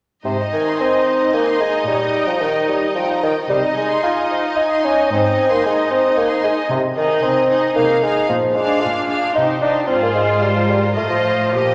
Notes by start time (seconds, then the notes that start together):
0.25 G#2 C3 D#4 C5 D#5
0.41 D#5
0.53 D#3 G#5
0.66 C6
0.79 C4 G#5
0.93 D#5
1.06 C5
1.20 D#5
1.33 A#3 G#5
1.46 C6
1.60 G#3 G#5
1.73 D#5
1.87 A#2 G3 C#5
2.01 D#5
2.15 G5
2.27 F3 A#5
2.41 D#3 G5
2.56 D#5
2.68 G3 C#5
2.83 D#5
2.95 F3 G5
3.09 A#5
3.23 D#3 G5
3.37 D#5
3.48 C3 G3 D#4 C5 D#5
3.63 D#5
3.76 G#3 G#5
3.91 C6
4.03 F4 G#5
4.18 D#5
4.31 C5
4.44 D#5
4.57 D#4 G#5
4.72 C6
4.84 C#4 G#5
4.99 D#5
5.10 G#2 C4 C5
5.25 D#5
5.37 G#5
5.50 A#3 C6
5.63 G#3 G#5
5.77 D#5
5.91 C4 C5
6.03 D#5
6.17 A#3 G#5
6.29 C6
6.43 G#3 G#5
6.56 D#5
6.71 C3
6.96 D#3 D#4 G#4 D#5
7.22 C3 C4
7.49 D#4 G#4 D#5
7.75 C3 A#3 D#4 G#4 F5
8.02 G#3 D#4 G#4 F5
8.29 A#2 F3
8.55 G#3 D4 G#4 F5
8.80 A#2 F4
9.09 D4 G#4 F5
9.35 C3 D#4 G4 C5
9.61 D4 D#4 G4 C5
9.87 G#2 C4 F4 G#4 C5
10.02 A#3
10.14 G#3
10.41 G3 A#4
10.56 F3
10.69 G3
10.96 A2 A3 F4 C5 D#5
11.10 F3
11.24 F3
11.53 A#2 F3 G4 A#4 D#5